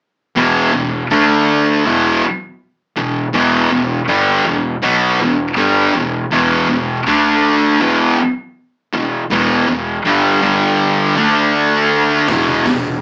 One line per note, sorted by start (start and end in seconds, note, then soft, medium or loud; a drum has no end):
0.36 0.71 E1 medium
0.36 0.73 E2 medium
0.36 0.73 B2 medium
0.36 0.73 E3 medium
0.74 1.08 E1 medium
0.74 1.03 E2 medium
0.74 1.04 B2 medium
1.10 1.81 D2 medium
1.10 1.84 D3 medium
1.10 1.84 A3 medium
1.10 1.85 D4 medium
1.85 2.20 E1 medium
1.85 2.21 E2 medium
1.85 2.22 B2 medium
1.85 2.22 E3 loud
2.96 3.31 E1 medium
2.96 3.26 E2 medium
2.96 3.27 B2 medium
3.33 3.68 E1 medium
3.33 3.70 E2 medium
3.33 3.70 B2 medium
3.33 3.71 E3 medium
3.71 4.06 E1 medium
3.71 4.01 E2 medium
3.71 4.01 B2 medium
4.08 4.43 G1 medium
4.08 4.45 G2 medium
4.08 4.45 D3 medium
4.08 4.45 G3 medium
4.44 4.80 E1 medium
4.44 4.75 E2 medium
4.44 4.75 B2 medium
4.82 5.17 B1 medium
4.82 5.19 B2 medium
4.82 5.19 F#3 medium
4.82 5.19 B3 medium
5.19 5.54 E1 medium
5.19 5.50 E2 medium
5.19 5.50 B2 medium
5.57 5.92 G1 medium
5.57 5.93 G2 medium
5.57 5.94 D3 medium
5.57 5.94 G3 medium
5.94 6.29 E1 medium
5.94 6.24 E2 medium
5.94 6.25 B2 medium
6.31 6.67 E1 medium
6.31 6.67 E2 medium
6.31 6.68 B2 medium
6.31 6.68 E3 medium
6.69 7.04 E1 medium
6.69 6.99 E2 medium
6.69 6.99 B2 medium
7.06 7.77 D2 medium
7.06 7.80 D3 medium
7.06 7.80 A3 medium
7.06 7.80 D4 medium
7.81 8.15 E1 medium
7.81 8.17 E2 medium
7.81 8.17 B2 loud
7.81 8.18 E3 medium
8.93 9.28 E1 medium
8.93 9.23 E2 medium
8.93 9.23 B2 medium
9.30 9.65 E1 medium
9.30 9.67 E2 medium
9.30 9.67 B2 medium
9.30 9.67 E3 medium
9.68 10.02 E1 medium
9.68 9.97 E2 soft
9.68 9.97 B2 medium
10.05 10.40 G1 medium
10.05 10.41 G2 medium
10.05 10.41 D3 medium
10.05 10.42 G3 loud
10.42 11.13 G1 medium
10.42 11.15 G2 medium
10.42 11.16 D3 medium
10.42 11.16 G3 medium
11.17 12.25 D2 medium
11.17 12.28 D3 medium
11.17 12.28 A3 medium
11.17 12.28 D4 medium
12.28 12.63 E1 loud
12.28 12.65 E2 medium
12.28 12.65 B2 medium
12.28 12.65 E3 medium
12.28 kick loud
12.28 open hi-hat medium
12.66 13.01 E1 medium
12.66 12.96 E2 medium
12.66 12.96 B2 medium
12.66 kick medium
12.66 open hi-hat soft